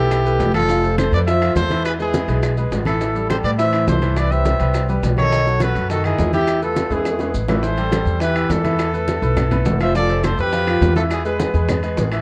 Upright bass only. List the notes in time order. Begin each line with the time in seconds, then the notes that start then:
Already playing: B1
0.39 F1
1.12 F2
1.55 E2
2.28 B1
2.71 A1
3.43 A2
3.87 C2
4.60 C2
5.03 B1
5.75 F#2
6.19 E2
6.90 E2
7.34 A1
8.05 E2
8.49 E2
9.22 B1
9.66 F1
10.38 F2
10.81 E2
11.54 E2
11.98 A1